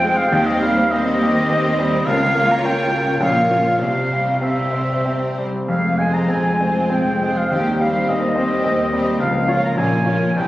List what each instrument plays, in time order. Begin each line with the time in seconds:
Already playing: double bass section F1, cello section F2, grand piano F2 G#3 C4 F4, viola section C4, violin section F4 C5, flute G5, oboe G5
0.02 grand piano G#3
0.16 flute F5, oboe F5
0.28 french horn section G3 C4, oboe G5
0.32 double bass section D#2, cello section D#2, grand piano D#2, viola section C4, violin section G4 C5, flute G5
0.46 oboe D#5, flute D#5
0.60 grand piano G3, oboe F5, flute F5
0.90 viola section C4, grand piano C4, violin section G4 C5, flute D#5, oboe D#5
1.23 grand piano G4
1.50 grand piano C4
1.79 grand piano G3
2.05 cello section C#2, grand piano C#2, double bass section C#2, french horn section A#3 C#4, viola section F4, violin section A#4 C#5, oboe F5, flute F5
2.35 grand piano A#3
2.51 flute A#5, oboe A#5
2.64 grand piano C#4, flute G5, oboe G5
2.92 grand piano F4
3.19 double bass section A#1, grand piano A#1, cello section A#2, french horn section A#3 C#4, viola section F4, violin section A#4 C#5, oboe F5, flute F5
3.50 grand piano C#4 F4
3.79 double bass section C2, grand piano C2, cello section C3, french horn section G3 C4, viola section C4, violin section G4 C5, flute F5, oboe F5
4.12 grand piano G3
4.41 grand piano C4, viola section C4, violin section G4 C5, flute E5, oboe E5
4.73 grand piano C5
5.05 grand piano C4
5.38 grand piano G3
5.67 double bass section F1, cello section F2, grand piano F2, french horn section G#3 C4, oboe F5, flute F5
5.98 grand piano G#3, viola section C4, violin section F4 C5, oboe G#5, flute G#5
6.14 oboe A#5, flute A#5
6.28 double bass section F1, cello section F2, grand piano C4, oboe G#5, flute G#5
6.58 viola section C4, violin section F4 C5, grand piano C5
6.90 double bass section F1, cello section F2, grand piano C4, oboe G5, flute G5
7.21 grand piano G#3, viola section C4, violin section F4 C5
7.37 flute F5, oboe F5
7.50 double bass section D#2, cello section D#2, grand piano D#2, french horn section G3, viola section C4, violin section G4 C5, oboe G5, flute G5
7.80 grand piano G3, viola section C4, violin section G4 C5, flute F5, oboe F5
8.08 double bass section D#2, cello section D#2, grand piano C4, oboe D#5, flute D#5
8.36 viola section C4, violin section G4 C5, grand piano C5
8.64 double bass section D#2, cello section D#2, grand piano C4
8.93 grand piano G3, viola section C4, violin section G4 C5
9.19 grand piano C#2, double bass section C#2, cello section C#2, french horn section F3 A#3, oboe F5, flute F5
9.48 viola section C#4, grand piano F4 C#5, violin section F4 A#4
9.64 flute A#5, oboe A#5
9.76 double bass section A#1, grand piano A#1, cello section A#2, viola section C#4, violin section F4 A#4, oboe G#5, flute G#5
10.06 viola section C#4, violin section F4 A#4, grand piano F4 C#5
10.34 double bass section C2, grand piano C2, cello section C3, french horn section E3 C4, viola section C4, violin section E4 G4, flute G5, oboe G5